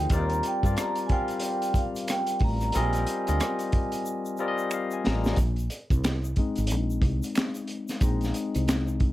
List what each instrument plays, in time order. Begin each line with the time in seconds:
Already playing: tine electric piano F3 A#3 D#4 G#4 C5, vibraphone G5
0.10 fretless electric bass D#2, tine electric piano G3 C4 F4 A#4 D5, kick, closed hi-hat, shaker
0.14 vibraphone A#5
0.29 closed hi-hat, shaker
0.43 closed hi-hat, shaker
0.47 vibraphone G5
0.63 fretless electric bass G2, tine electric piano G3 C4 F4 A#4 D5, kick, closed hi-hat, shaker
0.73 vibraphone A5, closed hi-hat
0.78 vibraphone A#5, finger snap, cross-stick, shaker
0.95 closed hi-hat, shaker
1.06 tine electric piano G3, vibraphone G#5, kick, closed hi-hat
1.11 tine electric piano C4 F4 A#4 F5, vibraphone G5
1.28 closed hi-hat, shaker
1.40 closed hi-hat, shaker
1.62 closed hi-hat, shaker
1.74 kick, closed hi-hat, shaker
1.78 vibraphone F5
1.96 closed hi-hat, shaker
2.08 vibraphone G5, finger snap, cross-stick, closed hi-hat, shaker
2.27 closed hi-hat, shaker
2.39 fretless electric bass A1, kick, open hi-hat
2.44 vibraphone A#5
2.61 cross-stick, closed hi-hat, shaker
2.72 fretless electric bass A#1, tine electric piano G3 C4 F4 A#4, closed hi-hat, shaker
2.76 tine electric piano D#5, vibraphone G#5
2.93 cross-stick, closed hi-hat, shaker
3.07 closed hi-hat, shaker
3.27 fretless electric bass D2, tine electric piano G3 C4 F4 A#4 D#5, closed hi-hat, shaker
3.40 finger snap, cross-stick, closed hi-hat, shaker
3.59 closed hi-hat, shaker
3.72 kick, closed hi-hat
3.92 closed hi-hat, shaker
4.06 shaker
4.26 shaker
4.37 tine electric piano G3 C4 F4 A#4 D#5, shaker
4.42 tine electric piano D5
4.48 tine electric piano D#5
4.58 shaker
4.71 tine electric piano F5, finger snap, shaker
4.91 tine electric piano G#5, shaker
5.06 fretless electric bass A1, tine electric piano A#5, snare
5.24 snare, shaker
5.36 fretless electric bass A#1, kick, closed hi-hat, shaker
5.56 closed hi-hat, shaker
5.70 closed hi-hat, shaker
5.90 fretless electric bass C2, kick, closed hi-hat, shaker
6.04 finger snap, snare, clap, closed hi-hat, shaker
6.24 shaker
6.36 tine electric piano G#3 C4 D#4, muted fretless electric bass stroke, kick, closed hi-hat
6.55 fretless electric bass G#1, closed hi-hat, shaker
6.67 closed hi-hat, shaker
6.71 fretless electric bass A#1
6.90 shaker
7.02 fretless electric bass C2, kick, closed hi-hat
7.23 closed hi-hat, shaker
7.35 finger snap, snare, clap, closed hi-hat, shaker
7.54 closed hi-hat, shaker
7.67 closed hi-hat
7.88 snare, closed hi-hat, shaker
8.01 fretless electric bass A#1, tine electric piano G#3 C4 D#4, kick, closed hi-hat, shaker
8.21 snare, closed hi-hat, shaker
8.34 closed hi-hat, shaker
8.54 fretless electric bass C2, closed hi-hat, shaker
8.68 finger snap, snare, clap, closed hi-hat, shaker
8.88 shaker
9.00 kick, closed hi-hat